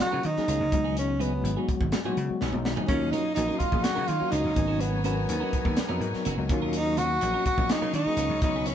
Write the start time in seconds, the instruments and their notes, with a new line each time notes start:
Already playing: tine electric piano F#3 A#3 C#4 F4
0.00 tenor saxophone F#4, muted clean electric guitar stroke, muted slap bass stroke, snare
0.12 slap bass C#3, clean electric guitar F#3 C#4 F4 A#4
0.23 slap bass D#3, tenor saxophone D#4, muted clean electric guitar stroke, closed hi-hat
0.36 tine electric piano F#3 A#3 C#4 G#4, muted slap bass stroke, snare
0.48 slap bass C#2, clean electric guitar F#3 C#4 F4 A#4, closed hi-hat
0.60 slap bass C#2, muted clean electric guitar stroke
0.72 slap bass C#2, tine electric piano F#3 G#3 B3 D#4, muted clean electric guitar stroke, kick, closed hi-hat
0.84 clean electric guitar B3 D#4 G#4
0.97 tenor saxophone C#4, closed hi-hat
1.08 muted clean electric guitar stroke
1.19 clean electric guitar F#3 B3 D#4 G#4, tine electric piano F#3 G#3 B3 C#4, tenor saxophone B3, closed hi-hat
1.33 muted clean electric guitar stroke
1.43 slap bass G#1, closed hi-hat
1.56 tine electric piano F#3 G#3 B3 F#4, clean electric guitar B3 D#4 G#4
1.69 muted clean electric guitar stroke, muted slap bass stroke, kick, closed hi-hat
1.81 slap bass G#1, muted clean electric guitar stroke, kick
1.92 muted slap bass stroke, muted clean electric guitar stroke, snare, closed hi-hat
2.05 slap bass A#2, tine electric piano F#3 G#3 B3 F#4, clean electric guitar F#3 B3 D#4 G#4
2.17 slap bass C#3, muted clean electric guitar stroke, closed hi-hat
2.30 muted slap bass stroke
2.41 slap bass B1, clean electric guitar F#3 B3 D#4 G#4, snare
2.53 slap bass B1, tine electric piano F#3 G#3 B3 D#4, muted clean electric guitar stroke, mid tom
2.65 muted clean electric guitar stroke, snare
2.76 clean electric guitar B3 D#4 G#4, floor tom
2.87 slap bass D#2, tine electric piano F#3 A#3 C#4 F4, clean electric guitar F#3 C#4 F4 A#4, tenor saxophone C#4, string section D#4 C#5 D#5 F5, kick, closed hi-hat
3.02 muted clean electric guitar stroke
3.12 clean electric guitar F#3 C#4 F4 A#4, tenor saxophone D#4, closed hi-hat
3.24 muted clean electric guitar stroke
3.34 slap bass A#1, tine electric piano F#3 A#3 C#4 F#4, tenor saxophone D#4, closed hi-hat
3.48 clean electric guitar C#4 F4 A#4
3.58 tenor saxophone F4, muted clean electric guitar stroke, muted slap bass stroke, kick, closed hi-hat
3.72 slap bass A#1, tine electric piano F#3 A#3 C#4 G#4, muted clean electric guitar stroke, kick
3.83 tenor saxophone F#4, muted clean electric guitar stroke, muted slap bass stroke, snare, closed hi-hat
3.95 slap bass C#3, clean electric guitar F#3 C#4 F4 A#4
4.07 slap bass D#3, tenor saxophone F4, muted clean electric guitar stroke, closed hi-hat
4.19 tine electric piano F#3 A#3 C#4 F#4, muted slap bass stroke
4.31 slap bass C#2, clean electric guitar F#3 C#4 F4 A#4, tenor saxophone D#4, closed hi-hat
4.44 slap bass C#2, muted clean electric guitar stroke
4.55 slap bass G#1, tine electric piano F#3 A#3 B3 C#4, string section F#3 G#5 A#5, muted clean electric guitar stroke, kick, closed hi-hat
4.68 clean electric guitar C#4 F#4 A#4
4.80 tenor saxophone B3, closed hi-hat
4.93 muted clean electric guitar stroke
5.04 tine electric piano F#3 B3 C#4 A#4, clean electric guitar B3 C#4 F#4 A#4, tenor saxophone B3, closed hi-hat
5.29 slap bass D#2, closed hi-hat
5.40 tine electric piano F#3 B3 D#4 A#4, clean electric guitar C#4 F#4 A#4
5.53 muted slap bass stroke, muted clean electric guitar stroke, kick, closed hi-hat
5.65 slap bass D#2, muted clean electric guitar stroke, kick
5.77 muted clean electric guitar stroke, muted slap bass stroke, snare, closed hi-hat
5.89 slap bass F2, tine electric piano F#3 B3 D#4 A#4, clean electric guitar B3 C#4 F#4 A#4
6.00 slap bass G#2, muted clean electric guitar stroke, closed hi-hat
6.14 muted slap bass stroke, snare
6.25 slap bass F#1, clean electric guitar B3 C#4 F#4 A#4, closed hi-hat
6.38 slap bass C#2, tine electric piano F#3 A#3 B3 D#4, muted clean electric guitar stroke
6.49 slap bass D#2, tine electric piano F#3 A#3 C#4 F4, string section D#5 F5 C#6, muted clean electric guitar stroke, kick, closed hi-hat
6.62 clean electric guitar C#4 F4 A#4
6.73 tenor saxophone D#4, closed hi-hat
6.85 muted clean electric guitar stroke
6.97 clean electric guitar F#3 C#4 F4 A#4, tenor saxophone F#4, closed hi-hat
7.10 muted clean electric guitar stroke
7.21 slap bass A#1, tine electric piano F#3 A#3 C#4 F#4, closed hi-hat
7.34 clean electric guitar C#4 F4 A#4
7.45 tenor saxophone F#4, muted clean electric guitar stroke, muted slap bass stroke, kick, closed hi-hat
7.57 slap bass A#1, tine electric piano F#3 A#3 C#4 F4, muted clean electric guitar stroke, kick
7.69 tenor saxophone D#4, muted slap bass stroke, muted clean electric guitar stroke, snare, closed hi-hat
7.81 slap bass C#3, clean electric guitar F#3 C#4 F4 A#4
7.93 slap bass D#3, tenor saxophone D#4, muted clean electric guitar stroke, closed hi-hat
8.06 tine electric piano F#3 A#3 C#4 G#4, muted slap bass stroke
8.17 slap bass C#2, clean electric guitar F#3 C#4 F4 A#4, closed hi-hat
8.29 slap bass C#2, muted clean electric guitar stroke
8.41 slap bass C#2, tine electric piano F#3 G#3 B3 D#4, tenor saxophone D#4, string section B5, muted clean electric guitar stroke, kick, closed hi-hat
8.56 clean electric guitar B3 D#4 G#4
8.66 tenor saxophone C#4, closed hi-hat